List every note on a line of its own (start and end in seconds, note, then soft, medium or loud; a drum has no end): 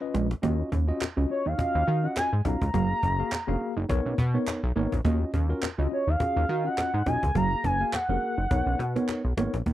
0.01 0.26 C#4 medium
0.01 0.27 F4 medium
0.01 0.27 B4 medium
0.01 0.27 D#5 medium
0.14 0.34 A#1 medium
0.14 0.27 G#3 medium
0.14 cajon slap medium
0.31 cajon slap medium
0.42 0.63 D#2 loud
0.42 0.56 A#3 medium
0.42 0.69 C#4 medium
0.42 0.69 F4 medium
0.42 0.69 F#4 medium
0.42 0.69 D#5 medium
0.42 cajon bass loud
0.72 0.92 D#2 loud
0.72 0.85 C#4 medium
0.72 cajon bass medium
0.88 1.04 C#4 medium
0.88 1.04 F4 medium
0.88 1.04 F#4 medium
0.88 1.04 D#5 loud
0.88 muted clean electric guitar stroke soft
1.01 cajon slap loud
1.01 cajon slap medium
1.01 clap loud
1.17 1.26 C#2 medium
1.17 1.42 C#4 medium
1.17 1.27 C#4 medium
1.17 1.42 F4 medium
1.17 1.42 F#4 medium
1.17 1.42 D#5 medium
1.30 1.45 C#5 medium
1.30 muted clean electric guitar stroke soft
1.46 1.55 D#2 medium
1.46 1.56 D#4 medium
1.46 2.06 F5 loud
1.58 1.84 C#4 medium
1.58 1.84 F4 medium
1.58 1.84 F#4 medium
1.58 1.84 D#5 medium
1.58 cajon bass loud
1.75 1.84 D#2 loud
1.87 2.07 D#3 loud
1.87 2.00 F#4 medium
1.87 cajon slap soft
2.03 2.29 C#4 medium
2.03 2.29 F4 medium
2.03 2.29 F#4 medium
2.03 2.29 D#5 medium
2.03 2.17 F#5 medium
2.17 2.30 G#5 loud
2.17 cajon slap loud
2.17 clap medium
2.33 2.41 G#2 loud
2.45 2.56 B1 loud
2.45 2.64 C#4 medium
2.45 2.58 D#4 medium
2.45 2.63 F4 medium
2.45 2.64 F#4 medium
2.45 2.64 F5 medium
2.45 4.15 A#5 loud
2.45 cajon bass loud
2.62 2.70 C#2 medium
2.62 cajon bass medium
2.74 2.94 F#1 loud
2.74 2.87 F#3 medium
2.74 3.00 A#3 medium
2.74 3.00 F#4 medium
2.74 3.00 G#4 medium
2.74 3.00 F5 medium
2.74 cajon bass loud
2.90 muted clean electric guitar stroke soft
3.03 3.23 F#1 loud
3.03 3.16 C#4 medium
3.03 cajon bass medium
3.19 3.34 A#3 medium
3.19 3.35 F#4 medium
3.19 3.35 G#4 medium
3.19 3.35 F5 medium
3.32 cajon slap loud
3.32 cajon slap medium
3.32 clap loud
3.47 3.57 F1 medium
3.47 3.73 A#3 loud
3.47 3.58 C#4 medium
3.47 3.73 F#4 medium
3.47 3.73 G#4 medium
3.47 3.73 F5 loud
3.61 muted clean electric guitar stroke soft
3.77 3.85 F#1 medium
3.77 3.87 D#4 medium
3.89 4.00 B1 loud
3.89 4.15 B3 medium
3.89 4.15 D#4 medium
3.89 4.15 A#4 medium
3.89 4.15 C#5 loud
3.89 cajon bass loud
4.06 4.14 B1 loud
4.06 4.16 C#4 medium
4.18 4.38 B2 loud
4.18 muted clean electric guitar stroke soft
4.18 cajon bass medium
4.34 4.59 B3 medium
4.34 4.44 B3 medium
4.34 4.59 D#4 medium
4.34 4.60 A#4 medium
4.34 4.60 C#5 loud
4.47 cajon slap loud
4.47 cajon slap medium
4.47 clap medium
4.64 4.72 B1 medium
4.76 4.87 G#1 loud
4.76 4.89 A#3 medium
4.76 4.94 B3 medium
4.76 4.94 D#4 medium
4.76 4.95 A#4 medium
4.76 4.95 C#5 loud
4.76 cajon slap soft
4.92 5.01 A#1 medium
4.92 cajon bass medium
5.04 5.25 D#2 loud
5.04 5.18 A#3 loud
5.04 5.30 C#4 medium
5.04 5.31 F4 medium
5.04 5.31 F#4 medium
5.04 5.31 D#5 loud
5.04 cajon bass loud
5.34 5.53 D#2 loud
5.34 5.47 C#4 medium
5.34 cajon bass loud
5.49 5.65 C#4 medium
5.49 5.65 F4 medium
5.49 5.65 F#4 medium
5.49 5.65 A#4 loud
5.49 muted clean electric guitar stroke soft
5.63 cajon slap loud
5.63 cajon slap medium
5.63 clap loud
5.78 5.87 C#2 medium
5.78 6.03 C#4 medium
5.78 5.89 C#4 medium
5.78 6.04 F4 medium
5.78 6.04 F#4 medium
5.78 6.04 D#5 medium
5.91 6.11 C#5 medium
5.91 muted clean electric guitar stroke soft
6.07 6.16 D#2 medium
6.07 6.18 D#4 medium
6.07 6.68 F5 loud
6.20 6.46 C#4 medium
6.20 6.46 F4 medium
6.20 6.46 F#4 medium
6.20 6.46 G#4 medium
6.20 cajon bass loud
6.36 6.45 D#2 loud
6.49 6.69 D#3 loud
6.49 6.62 F#4 medium
6.49 cajon slap soft
6.64 6.90 C#4 medium
6.64 6.90 F4 medium
6.64 6.90 F#4 medium
6.64 6.90 D#5 medium
6.64 7.09 F#5 loud
6.78 cajon slap loud
6.78 cajon slap medium
6.78 clap medium
6.94 7.03 G#2 loud
7.06 7.18 B1 medium
7.06 7.25 C#4 medium
7.06 7.20 D#4 medium
7.06 7.25 F4 medium
7.06 7.25 F#4 medium
7.06 7.25 D#5 medium
7.06 7.36 G#5 loud
7.06 cajon bass medium
7.23 7.32 C#2 loud
7.23 cajon bass medium
7.35 7.55 F#1 loud
7.35 7.48 F#3 medium
7.35 7.61 A#3 medium
7.35 7.61 F#4 medium
7.35 7.61 G#4 medium
7.35 7.61 F5 medium
7.35 7.67 A#5 loud
7.35 cajon bass loud
7.52 muted clean electric guitar stroke soft
7.64 7.84 F#1 loud
7.64 7.77 C#4 medium
7.64 7.96 G#5 loud
7.64 cajon bass loud
7.80 7.96 A#3 medium
7.80 7.96 F#4 medium
7.80 7.96 G#4 medium
7.80 7.96 F5 medium
7.93 9.38 F#5 loud
7.93 cajon slap loud
7.93 cajon slap medium
7.93 clap loud
8.09 8.18 F1 medium
8.09 8.34 A#3 medium
8.09 8.19 C#4 medium
8.09 8.34 F#4 medium
8.09 8.35 G#4 medium
8.09 8.35 A#4 medium
8.22 muted clean electric guitar stroke soft
8.38 8.47 F#1 medium
8.38 8.48 D#4 medium
8.51 8.62 B1 loud
8.51 8.77 B3 medium
8.51 8.77 D#4 medium
8.51 8.77 A#4 medium
8.51 8.77 C#5 medium
8.51 cajon bass loud
8.51 cajon slap medium
8.66 8.75 B1 loud
8.66 8.77 C#4 medium
8.79 8.99 B2 loud
8.79 muted clean electric guitar stroke soft
8.79 cajon slap soft
8.79 cajon slap medium
8.96 9.21 B3 medium
8.96 9.06 B3 medium
8.96 9.21 D#4 medium
8.96 9.21 A#4 medium
8.96 9.21 C#5 medium
8.96 cajon slap medium
9.09 cajon slap medium
9.09 clap medium
9.25 9.33 B1 medium
9.37 9.48 G#1 medium
9.37 9.50 A#3 medium
9.37 9.56 B3 medium
9.37 9.56 D#4 medium
9.37 9.56 A#4 medium
9.37 9.56 C#5 loud
9.37 cajon slap loud
9.53 9.62 A#1 medium
9.53 cajon slap medium
9.66 9.73 D#2 loud
9.66 9.73 A#3 medium
9.66 cajon bass loud